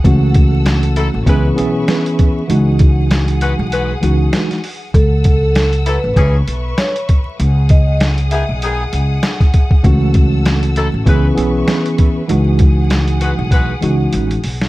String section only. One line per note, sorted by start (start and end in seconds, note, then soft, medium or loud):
0.00 1.25 A4 medium
0.00 1.23 F#5 medium
0.00 1.25 E6 medium
1.27 2.48 B4 medium
1.27 2.48 E5 medium
1.27 2.48 C#6 medium
2.49 4.92 G#4 medium
2.49 4.92 F#5 medium
2.49 4.92 D#6 medium
4.95 6.16 A4 medium
4.95 6.16 F#5 medium
4.95 6.16 E6 medium
6.16 7.38 B4 medium
6.16 7.38 E5 medium
6.16 7.38 C#6 medium
7.39 9.81 G#4 medium
7.39 11.03 F#5 medium
7.39 9.81 D#6 medium
9.83 11.05 A4 medium
9.83 11.05 E6 medium
11.07 12.28 B4 medium
11.07 12.28 E5 medium
11.07 12.28 C#6 medium
12.28 14.69 G#4 medium
12.28 14.69 F#5 medium
12.28 14.69 D#6 medium